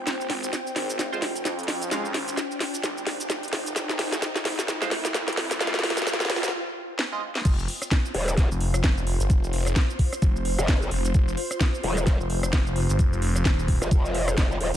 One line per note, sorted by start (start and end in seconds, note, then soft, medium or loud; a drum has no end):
0.00 6.53 F4 medium
0.00 6.53 C5 medium
0.00 6.53 G5 medium
0.00 riser medium
0.07 0.28 F1 loud
0.07 snare medium
0.07 closed hi-hat medium
0.07 shaker medium
0.21 shaker soft
0.30 0.51 G#1 loud
0.30 snare medium
0.30 open hi-hat loud
0.43 closed hi-hat soft
0.43 shaker medium
0.53 snare medium
0.53 closed hi-hat medium
0.53 shaker medium
0.67 shaker soft
0.76 1.10 G#1 medium
0.76 snare medium
0.76 open hi-hat loud
0.89 closed hi-hat soft
0.89 shaker medium
0.99 snare medium
0.99 closed hi-hat medium
0.99 shaker medium
1.12 1.44 F1 loud
1.12 1.18 G#3 medium
1.12 1.18 F4 medium
1.12 1.18 C5 medium
1.12 shaker soft
1.22 snare medium
1.22 open hi-hat loud
1.36 closed hi-hat medium
1.36 shaker medium
1.45 1.90 F2 loud
1.45 snare medium
1.45 closed hi-hat medium
1.45 shaker medium
1.59 closed hi-hat soft
1.59 shaker soft
1.63 closed hi-hat medium
1.68 snare medium
1.68 open hi-hat loud
1.82 closed hi-hat soft
1.82 shaker medium
1.91 2.13 F2 loud
1.91 2.04 G#3 medium
1.91 2.04 F4 medium
1.91 2.04 F5 medium
1.91 snare medium
1.91 closed hi-hat medium
1.91 shaker medium
2.05 shaker soft
2.14 2.36 G#1 loud
2.14 snare medium
2.14 open hi-hat loud
2.28 closed hi-hat medium
2.28 shaker medium
2.37 snare medium
2.37 closed hi-hat medium
2.37 shaker medium
2.52 shaker soft
2.61 snare medium
2.61 open hi-hat loud
2.74 closed hi-hat soft
2.74 shaker medium
2.83 3.18 G#1 loud
2.83 snare medium
2.83 closed hi-hat medium
2.83 shaker medium
2.98 shaker soft
3.07 snare medium
3.07 open hi-hat loud
3.20 3.51 F1 loud
3.20 closed hi-hat medium
3.20 shaker medium
3.30 snare medium
3.30 closed hi-hat medium
3.30 shaker medium
3.43 closed hi-hat soft
3.43 shaker soft
3.48 closed hi-hat medium
3.53 3.74 F1 loud
3.53 snare medium
3.53 open hi-hat loud
3.66 closed hi-hat medium
3.66 shaker medium
3.76 3.97 F1 loud
3.76 snare medium
3.76 closed hi-hat medium
3.76 shaker medium
3.89 snare medium
3.89 shaker soft
3.99 4.21 G#1 loud
3.99 snare medium
3.99 open hi-hat loud
4.12 snare medium
4.12 closed hi-hat medium
4.12 shaker medium
4.22 snare medium
4.22 closed hi-hat medium
4.22 shaker medium
4.36 snare medium
4.36 shaker soft
4.45 4.79 G#1 loud
4.45 snare medium
4.45 open hi-hat loud
4.59 snare medium
4.59 closed hi-hat medium
4.59 shaker medium
4.68 snare medium
4.68 closed hi-hat medium
4.68 shaker medium
4.82 5.13 F1 loud
4.82 4.88 G#3 medium
4.82 4.88 F4 medium
4.82 4.88 C5 medium
4.82 snare medium
4.82 shaker soft
4.91 snare medium
4.91 open hi-hat loud
5.05 snare medium
5.05 closed hi-hat medium
5.05 shaker medium
5.14 5.59 F2 loud
5.14 snare loud
5.14 closed hi-hat medium
5.14 shaker medium
5.28 snare medium
5.28 closed hi-hat soft
5.28 shaker soft
5.33 closed hi-hat medium
5.37 snare loud
5.37 open hi-hat loud
5.51 snare medium
5.51 closed hi-hat medium
5.51 shaker medium
5.61 5.82 F2 loud
5.61 5.74 G#3 medium
5.61 5.74 F4 medium
5.61 5.74 F5 medium
5.61 snare loud
5.61 closed hi-hat medium
5.61 shaker medium
5.67 snare medium
5.74 snare medium
5.74 shaker soft
5.79 snare medium
5.84 6.05 G#1 loud
5.84 snare loud
5.84 open hi-hat loud
5.90 snare medium
5.97 snare medium
5.97 closed hi-hat medium
5.97 shaker medium
6.02 snare medium
6.07 6.51 G1 loud
6.07 snare loud
6.07 closed hi-hat medium
6.07 shaker medium
6.13 snare medium
6.20 snare medium
6.20 shaker soft
6.25 snare medium
6.30 snare loud
6.30 open hi-hat loud
6.36 snare medium
6.43 snare medium
6.43 closed hi-hat medium
6.43 shaker medium
6.48 snare medium
6.99 snare loud
7.12 7.22 G#3 medium
7.12 7.22 F4 medium
7.12 7.22 D#5 medium
7.35 snare medium
7.45 7.67 F1 loud
7.45 14.77 F4 medium
7.45 kick loud
7.45 closed hi-hat medium
7.45 crash loud
7.45 shaker medium
7.59 shaker soft
7.68 open hi-hat loud
7.73 14.77 C5 medium
7.82 cross-stick medium
7.82 closed hi-hat medium
7.82 shaker medium
7.91 kick loud
7.91 snare loud
7.91 shaker medium
8.05 shaker soft
8.14 8.49 D#1 loud
8.14 open hi-hat loud
8.28 cross-stick medium
8.28 closed hi-hat medium
8.28 shaker medium
8.37 kick loud
8.37 snare medium
8.37 closed hi-hat medium
8.37 shaker medium
8.51 8.82 F1 loud
8.51 shaker soft
8.60 open hi-hat loud
8.74 cross-stick medium
8.74 closed hi-hat medium
8.74 shaker medium
8.84 8.95 F1 loud
8.84 kick loud
8.84 snare loud
8.84 closed hi-hat medium
8.84 shaker medium
8.97 9.18 F1 loud
8.97 shaker soft
9.07 open hi-hat loud
9.20 9.28 G1 loud
9.20 closed hi-hat medium
9.20 shaker medium
9.30 9.74 F1 loud
9.30 kick loud
9.30 closed hi-hat medium
9.30 shaker medium
9.44 shaker soft
9.53 open hi-hat loud
9.66 cross-stick medium
9.66 closed hi-hat medium
9.66 shaker medium
9.76 kick loud
9.76 snare loud
9.76 shaker medium
9.90 shaker soft
9.99 kick medium
9.99 open hi-hat loud
10.13 cross-stick medium
10.13 closed hi-hat medium
10.13 shaker medium
10.22 10.56 F1 medium
10.22 kick loud
10.22 closed hi-hat medium
10.22 shaker medium
10.36 shaker soft
10.45 open hi-hat loud
10.59 10.90 F1 loud
10.59 cross-stick medium
10.59 closed hi-hat medium
10.59 shaker medium
10.68 kick loud
10.68 snare loud
10.68 closed hi-hat medium
10.68 shaker medium
10.82 shaker soft
10.91 11.13 F1 loud
10.91 open hi-hat loud
11.05 closed hi-hat medium
11.05 shaker medium
11.14 11.36 F1 loud
11.14 kick loud
11.14 closed hi-hat medium
11.14 shaker medium
11.28 shaker soft
11.37 open hi-hat loud
11.51 cross-stick medium
11.51 closed hi-hat medium
11.51 shaker medium
11.61 kick loud
11.61 snare loud
11.61 shaker medium
11.75 shaker soft
11.84 12.18 D#1 loud
11.84 open hi-hat loud
11.97 cross-stick medium
11.97 closed hi-hat medium
11.97 shaker medium
12.07 kick loud
12.07 snare medium
12.07 closed hi-hat medium
12.07 shaker medium
12.20 12.51 F1 loud
12.20 shaker soft
12.30 open hi-hat loud
12.43 cross-stick medium
12.43 closed hi-hat medium
12.43 shaker medium
12.53 12.64 F1 loud
12.53 kick loud
12.53 snare loud
12.53 closed hi-hat medium
12.53 shaker medium
12.66 12.87 F1 loud
12.66 shaker soft
12.76 open hi-hat loud
12.89 12.97 G1 loud
12.89 closed hi-hat medium
12.89 shaker medium
12.99 13.44 F1 loud
12.99 kick loud
12.99 closed hi-hat medium
12.99 shaker medium
13.13 shaker soft
13.22 open hi-hat loud
13.36 cross-stick medium
13.36 closed hi-hat medium
13.36 shaker medium
13.45 13.80 D#1 loud
13.45 kick loud
13.45 snare loud
13.45 shaker medium
13.59 shaker soft
13.68 kick medium
13.68 open hi-hat loud
13.82 13.90 F1 loud
13.82 cross-stick medium
13.82 closed hi-hat medium
13.82 shaker medium
13.91 14.36 F1 loud
13.91 kick loud
13.91 closed hi-hat medium
13.91 shaker medium
14.06 shaker soft
14.14 open hi-hat loud
14.28 cross-stick medium
14.28 closed hi-hat medium
14.28 shaker medium
14.37 14.59 F1 loud
14.37 kick loud
14.37 snare loud
14.37 closed hi-hat medium
14.37 shaker medium
14.52 shaker soft
14.61 14.72 D#1 loud
14.61 open hi-hat loud